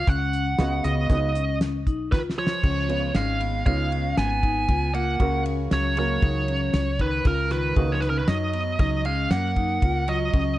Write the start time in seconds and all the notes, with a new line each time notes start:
0.07 C#2 C#4 F#5, kick, closed hi-hat
0.33 closed hi-hat
0.58 C#2 C#3 B3 C#4 F#4 D#5, snare, closed hi-hat
0.84 C#2 B3 D#5, closed hi-hat
1.10 C#2 C#3 B3 D#4 F#4 D#5, kick, snare, closed hi-hat
1.35 C#4, closed hi-hat
1.61 snare, closed hi-hat
1.87 B1 D#4, kick, closed hi-hat
2.12 C#2 D#3 F4 B4, kick, snare
2.30 snare
2.38 F3 F4 C#5
2.47 snare
2.63 C#2 C#4, kick, crash
2.88 C#3 B3 F4 C#5, ride
3.15 G#1 G#3 C#4 F5, snare, ride
3.40 B3, ride
3.66 C#2 C#3 G#3 B3 D#4 F4 C#5 F5, kick, ride
3.92 C#4, ride
4.17 G#1 B3 G#5, snare, ride
4.43 D#4, kick, ride
4.69 C#2 F4, kick, ride
4.94 A#3 F4 F#5, ride
5.20 C#2 C#3 C#4 F#4 A#4, kick, ride
5.46 ride
5.71 C#2 F#3 C#4 C#5, snare, ride
5.97 C#3 F#3 A#3 C#4 F#4 A#4 C#5, ride
6.22 C#2 D#4, kick, ride
6.48 C#4, ride
6.74 C#2, snare, ride
6.99 D#3 D#4 B4, kick, ride
7.25 C#2 C#3 F4 A#4, kick, snare, ride
7.51 D#3 F4 B4, snare, ride
7.76 C#2 C#3 A#3 D#4 F#4, kick, ride
7.92 F3 C#5
8.00 D#3 B4, snare, ride
8.10 C#3 A#4
8.19 D#3 B4
8.28 F#2 F#3 D#4 D#5, snare, ride
8.53 B3, ride
8.79 C#2 F#3 D#4 D#5, kick, snare, ride
9.05 G#3 C#4 F5, ride
9.31 F#2 A#3 F#5, snare, ride
9.56 D#4, kick, ride
9.82 C#2 F4, kick, ride
10.08 F#3 F4 D#5, ride
10.33 C#2 C#4, kick, ride